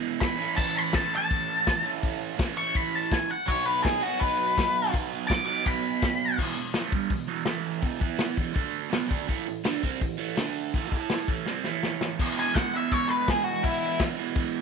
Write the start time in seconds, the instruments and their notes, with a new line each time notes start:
Already playing: overdriven electric guitar E2 B2 E3 G#3 B3 E4
0.21 lead electric guitar B5, kick, snare, open hi-hat
0.37 overdriven electric guitar A2 E3 A3 C#4 E4
0.56 lead electric guitar A5, kick, crash, shaker
0.78 lead electric guitar B5, shaker
0.93 overdriven electric guitar A2 E3 A3 C#4, lead electric guitar A5, kick, snare, open hi-hat, shaker
0.97 overdriven electric guitar E4
1.13 lead electric guitar A5, shaker
1.30 kick, open hi-hat, shaker
1.50 shaker
1.67 kick, snare, open hi-hat, shaker
1.82 overdriven electric guitar A2 E3 A3 C#4 E4, shaker
2.03 kick, open hi-hat, shaker
2.22 shaker
2.37 overdriven electric guitar A2 E3 A3 C#4 E4, kick, snare, open hi-hat, shaker
2.57 lead electric guitar C#6, shaker
2.75 lead electric guitar B5, kick, open hi-hat, shaker
2.93 lead electric guitar A5, shaker
3.12 lead electric guitar G#5, kick, snare, open hi-hat, shaker
3.29 lead electric guitar F#5, shaker
3.46 overdriven electric guitar B2 F#3 B3 D#4 F#4, lead electric guitar C#5, kick, open hi-hat, shaker
3.65 lead electric guitar B4, shaker
3.83 lead electric guitar G#4, kick, snare, open hi-hat, shaker
4.00 overdriven electric guitar B2 F#3 B3 D#4 F#4, lead electric guitar F#4, shaker
4.20 lead electric guitar B4, kick, open hi-hat, shaker
4.38 shaker
4.58 kick, snare, open hi-hat, shaker
4.75 shaker
4.91 overdriven electric guitar B2 F#3 B3 D#4 F#4, kick, open hi-hat, shaker
5.12 shaker
5.28 lead electric guitar D6, kick, snare, open hi-hat, shaker
5.46 overdriven electric guitar B2 F#3 B3 D#4 F#4, lead electric guitar D6, shaker
5.66 lead electric guitar B5, kick, open hi-hat, shaker
5.83 shaker
6.01 kick, snare, open hi-hat, shaker
6.20 shaker
6.38 overdriven electric guitar E2 B2 E3, kick, crash
6.56 overdriven electric guitar E2 B2
6.73 overdriven electric guitar A2 E3 A3, snare, open hi-hat
6.92 overdriven electric guitar G2 D3 G3, kick
7.10 overdriven electric guitar E2 B2, kick, open hi-hat
7.27 overdriven electric guitar E2 B2 E3
7.45 overdriven electric guitar A2 E3 A3, snare, open hi-hat
7.81 overdriven electric guitar E2 B2 E3, kick, open hi-hat
8.00 overdriven electric guitar E3 B3 E4, kick
8.19 snare, open hi-hat
8.36 overdriven electric guitar E2 B2 E3, kick
8.53 overdriven electric guitar D3 A3 D4, kick, open hi-hat
8.90 overdriven electric guitar B2 F#3 B3, snare, open hi-hat
9.08 overdriven electric guitar D3 A3 D4, kick
9.28 overdriven electric guitar A2 E3 A3, kick, open hi-hat, shaker
9.46 overdriven electric guitar A2 E3, shaker
9.56 shaker
9.64 overdriven electric guitar D3 A3 D4, snare, open hi-hat, shaker
9.82 overdriven electric guitar C3 G3 C4, kick, shaker
10.01 overdriven electric guitar A2 E3, kick, open hi-hat, shaker
10.17 overdriven electric guitar A2 E3 A3, shaker
10.30 shaker
10.37 overdriven electric guitar D3 A3 D4, snare, open hi-hat, shaker
10.58 shaker
10.74 overdriven electric guitar A2 E3 A3, kick, open hi-hat, shaker
10.92 overdriven electric guitar A3 E4 A4, kick, shaker
11.09 snare, open hi-hat, shaker
11.28 overdriven electric guitar A2 E3 A3, kick, shaker
11.37 shaker
11.46 overdriven electric guitar C3 G3 C4, snare, shaker
11.64 overdriven electric guitar A2 E3 A3, snare, shaker
11.83 snare, shaker
12.01 snare, shaker
12.19 overdriven electric guitar E2 B2 E3 G#3 B3 E4, kick, crash
12.39 lead electric guitar G#5
12.55 lead electric guitar F#5, kick, snare, open hi-hat
12.73 overdriven electric guitar E2 B2 E3 G#3 B3 E4, lead electric guitar E5
12.92 lead electric guitar C#5, kick, open hi-hat
13.09 lead electric guitar B4
13.28 lead electric guitar G#4, kick, snare, open hi-hat
13.44 lead electric guitar F#4
13.63 overdriven electric guitar E2 B2 E3 G#3 B3 E4, lead electric guitar E4, kick, open hi-hat
13.99 kick, snare, open hi-hat
14.17 overdriven electric guitar E2 B2 E3 G#3 B3 E4
14.35 kick, open hi-hat